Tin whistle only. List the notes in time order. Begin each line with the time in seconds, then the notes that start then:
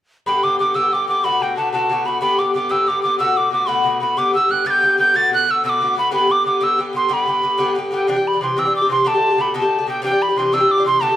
0.27 B5
0.43 D6
0.60 D6
0.75 E6
0.93 D6
1.09 D6
1.24 B5
1.42 G5
1.57 A5
1.73 A5
2.06 B5
2.21 B5
2.39 D6
2.55 D6
2.71 E6
2.88 D6
3.03 D6
3.20 E6
3.37 D6
3.53 D6
3.68 B5
4.01 B5
4.18 D6
4.35 E6
4.51 F#6
4.67 G6 A6
4.99 G6
5.16 A6
5.34 F#6
5.51 E6
5.65 D6 E6
5.99 B5
6.14 B5
6.31 D6
6.47 D6
6.63 E6
6.97 C6
7.13 B5
7.95 G5
8.11 G5
8.27 B5
8.43 C6
8.59 E6
8.76 D6
8.91 C6
9.07 A5
9.41 B5
9.57 A5
9.89 G5
10.04 G5
10.22 B5
10.38 C6
10.54 E6
10.71 D6
10.87 C6
11.02 A5